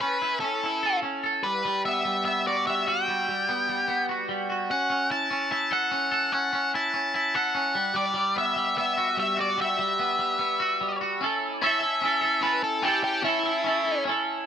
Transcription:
Already playing: E4 A4
0.00 C#4 B4
0.22 E4
0.40 C#4 A4
0.63 E4
0.83 A4
1.03 C#4
1.24 A4
1.43 G3 B4
1.65 G3
1.85 B3 E5
2.05 G3
2.25 B3 E5
2.47 F#4 D5
2.67 G3 E5
2.87 F#4 G5
3.08 G3
3.28 G3
3.49 B3
3.69 G3
3.88 B3
4.09 F#4
4.29 G3
4.50 F#4
4.71 C#4 F#5
4.90 C#4
5.10 E4 A5
5.31 C#4
5.51 E4 A5
5.71 A4 F#5
5.91 C#4
6.12 A4
6.33 C#4 F#5
6.53 C#4
6.74 E4 A5
6.94 C#4
7.14 E4 A5
7.35 A4 F#5
7.55 C#4
7.75 G3
7.94 G3 D5
8.14 G3
8.36 B3 E5
8.56 G3
8.77 B3 E5
8.97 F#4
9.17 G3 E5
9.37 F#4 D5
9.58 G3 E5
9.79 G3
9.99 B3
10.19 G3
10.39 B3
10.60 F#4
10.81 G3
11.01 F#4
11.21 C#4 E4 A4
11.62 C#4 E4 A4 E5
11.80 E4 A4
12.02 C#4 E4 A4
12.21 E4 A4
12.41 C#4 E4 A4 B4
12.64 A4
12.82 C#4 E4 G4 A4
13.04 G4
13.22 C#4 E4 A4
13.43 E4 A4
13.64 C#4 E4 A4
13.85 E4 A4
14.05 C#4 E4
14.09 A4

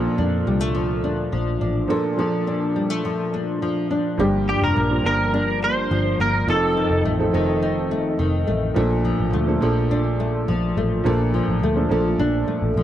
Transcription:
Already playing: A#2 F3 A3 A#3 D4 F4
0.18 F2 D4
0.47 C2 G3
0.61 A3
0.75 F3
1.04 D2 D4
1.32 A#1 F3
1.61 A1 D4
1.88 A#2 F3 A#3 D4 A4
2.17 F3 A#3 D4 A4
2.47 D4
2.76 G3
2.90 A3
3.05 F3
3.33 D4
3.62 F3
3.91 D4
4.18 G1 G2 F3 A#3 D4 G4
4.48 F3 G4
4.62 F1 A#4
4.77 A#1 A#3
4.89 F3 A#3 D4 F4
5.03 G1 F3 A#3 D4 A#4
5.34 D4
5.62 A#3 C5
5.91 G1 F3
6.20 G1 A#3 A#4
6.47 F1 F2 F3 C4 D#4 A4
6.77 D#3
6.91 F1
7.05 A1 A3
7.18 F3 C4 D#4 A4
7.32 F1 D#3 F3 C4 D#4 A4
7.62 D#4
7.91 A3
8.19 F1 D#3
8.47 A1 A3
8.74 A#1 A#2 F3 A#3 D4 A4
9.05 F3
9.20 A1
9.33 D2 A3
9.46 F3 A#3 D4 A4
9.61 A#1 F3 A#3 D4 A4
9.91 D4
10.20 A3
10.48 A#1 F3
10.77 A1 A3
11.04 A#1 A#2 F3 A#3 D4 A4
11.34 F3
11.48 A1
11.63 D2 A3
11.75 F3 A#3 D4 A4
11.89 A#1 F3 A#3 D4 A4
12.19 A#1 D4
12.48 A3, muted picked electric bass stroke
12.62 A1
12.76 A#1 F3

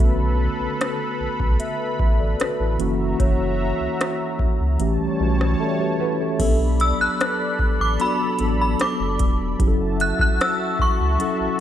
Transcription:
Already playing: B1 D3 A3 B3 C#4 F#4 A4 B4 B5
0.00 kick, closed hi-hat
0.60 B1
0.81 cross-stick, closed hi-hat
1.20 B1
1.40 B1, kick
1.60 E5, closed hi-hat
1.99 A1 B4 E5, kick
2.20 A4 D5
2.40 F#4 B4, cross-stick, closed hi-hat
2.60 A1 E4 A4
2.78 F#1 E3 A#3 C#4 F#4 E5 A#5, closed hi-hat
3.20 F#1 C#5, kick, closed hi-hat
3.80 C#2
4.01 cross-stick, closed hi-hat
4.39 C#2, kick
4.60 C#2
4.79 A1 E3 G3 A3 C#4 G4 C#5 A5, closed hi-hat
5.00 B1
5.19 B1 E3 A3 C#4 F#4
5.41 cross-stick
5.60 C#4 E4 G4 A4
5.80 F#4 G4 B4 C#5
6.00 E4 F#4 A4 B4
6.20 C#4 E4 G4 A4
6.39 B1 F#3 B3 C#4 A4 D5 B5, kick, closed hi-hat, crash
6.47 D4
6.80 E6, closed hi-hat
7.00 A1 F#6
7.20 B4, cross-stick, closed hi-hat
7.59 A1, kick
7.80 A1 D6
7.99 F#3 B3 D4 F#4 B5, closed hi-hat
8.39 A1 F#3 B3 D4 A4, closed hi-hat
8.61 B5
8.80 D6, cross-stick, closed hi-hat
9.00 F#1
9.19 E1, kick, closed hi-hat
9.59 F#1 F#3 C#4 E4 F#4 G4 E5 A5, kick, closed hi-hat
9.68 A4
10.00 F#6, closed hi-hat
10.19 C#2 F#6, kick
10.41 E6, cross-stick, closed hi-hat
10.79 C#2 C#6, kick
11.00 C#2
11.19 F#3 C#4 E4 A4, closed hi-hat
11.40 A1

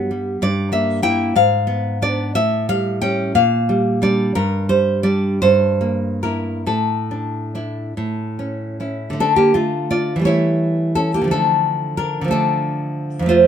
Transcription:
Already playing: G2 F#3 B3
0.11 G3
0.42 G2 D5
0.72 A#3 E5
1.02 A#3 E4 G5
1.36 G#2 F5
1.67 B3
2.02 B3 D4 D5
2.35 A2 E5
2.69 G3 F5
3.02 G3 C#4 G5
3.35 A#2 F5
3.69 G3
4.02 G3 D4 D5
4.35 G2 A#4
4.69 G3 C5
5.03 G3 D4 D5
5.42 G2 C5
5.81 A#3
6.23 A#3 E4 A#4
6.66 A2 A4
7.11 D4
7.55 D4 E4
7.97 A2
8.39 C#4
8.80 C#4 E4
9.10 D3 A3
9.20 D4 A4
9.36 A#3 G4
9.54 A3 F4
9.91 F4 D5
10.16 E3 G3
10.21 A3 C#5
10.27 E4
10.95 C#4 A4
11.14 A#3 G4
11.21 D3 F3
11.28 A3 A4
11.33 D4
11.97 D4 A#4
12.21 D3 F3
12.28 A3 A4
12.32 D4
13.19 F2 F3
13.26 A3 C5
13.30 F4

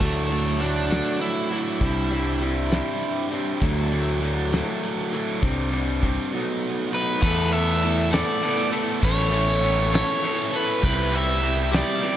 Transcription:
0.00 D2 E3 F#3 A3 D4 E4 F#4, kick, closed hi-hat
0.30 E3 F#3 A3 D4 E4 F#4, closed hi-hat
0.60 E3 F#3 A3 D4 E4 F#4, closed hi-hat
0.89 E3 F#3 A3 D4 E4 F#4, snare, closed hi-hat
1.21 E4, closed hi-hat
1.50 E3 F#3 A3 D4 E4 F#4, closed hi-hat
1.81 C2 G3 C4 D4 G4, kick, closed hi-hat
2.11 G3 C4 D4 G4, closed hi-hat
2.40 G3 C4 D4 G4, closed hi-hat
2.71 G3 C4 D4 G4, snare, closed hi-hat
3.02 closed hi-hat
3.31 G3 C4 D4 G4, closed hi-hat
3.61 D2 F#3 A3 D4 E4, kick, closed hi-hat
3.92 F#3 A3 D4 E4, closed hi-hat
4.22 F#3 A3 D4 E4, closed hi-hat
4.52 F#3 A3 D4 E4, snare, closed hi-hat
4.83 closed hi-hat
5.13 F#3 A3 D4 E4, closed hi-hat
5.42 C2 G3 C4 D4, kick, closed hi-hat
5.73 G3 C4 D4, closed hi-hat
6.03 G3 C4 D4, kick, closed hi-hat
6.33 F#3 A3 B3 D#4
6.92 F#3 A3 B3 D#4 B4
7.21 E2 E3 A3 B3 E4 A4 B4 E5 B5 E6, kick, crash, tambourine
7.53 A3 B3 E4 A4 E5, ride
7.67 tambourine
7.82 A3 B3 E4 A4, ride
8.11 E3 A3 B3 E4 A4 D5, snare, ride, tambourine
8.41 E3 A3 B3 E4 A4, ride
8.57 tambourine
8.72 A3 B3 E4 A4, ride
9.01 A1 E3 B3 C#4 E4 A4 C#5 C#6, kick, ride, tambourine
9.18 tambourine
9.32 B3 C#4 E4 A4, ride
9.47 tambourine
9.61 C#4 E4 A4, ride
9.93 E3 B3 C#4 E4 A4 C#5, snare, ride, tambourine
10.21 E3 B3 C#4 E4 A4, ride
10.38 tambourine
10.51 B3 C#4 E4 A4, ride
10.56 B4
10.81 C2 E3 G3 B3 C4 E4 G4 B4 G5 B5, kick, tambourine, crash
11.12 G3 B3 C4 E4 G4 E5, ride
11.28 tambourine
11.42 G3 C4 E4 G4, ride
11.72 E3 G3 B3 C4 E4 G4 D5, snare, ride, tambourine
12.02 E3 G3 B3 C4 E4 G4, ride

